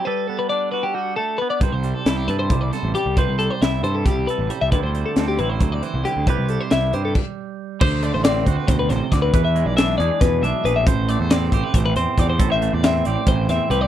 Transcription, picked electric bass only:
X:1
M:7/8
L:1/16
Q:1/4=136
K:Clyd
V:1 name="Picked electric bass" clef=bass
z12 z2 | C,, C,,2 z C,,2 G,,2 C,,2 z A,,, z C,,- | C,, C,,2 z C,,2 G,,2 C,,2 z A,,, z C,, | D,, D,,2 z D,,2 A,,,2 D,,2 z C,, z D,, |
C,, C,,2 z C,,2 G,,2 z6 | D,,3 A,,,3 D,, z D,,2 A,,, z D,,2 | E,,3 B,,,3 E,, z E,,2 B,,, z _B,,,2 | A,,,3 E,,3 A,,, z A,,,2 E,, z E,,2 |
A,,,3 E,,3 A,,, z A,,,2 E,, z C,,2 |]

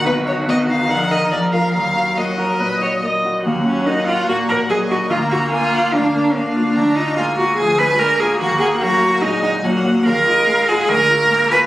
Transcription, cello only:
X:1
M:4/4
L:1/8
Q:1/4=145
K:Ebm
V:1 name="Cello"
E,6 F,2 | G,6- G, z | B, D E F G B A G | F G F2 =D D B,2 |
=D E F G A c B A | G A G2 E E B,2 | B3 A B3 c |]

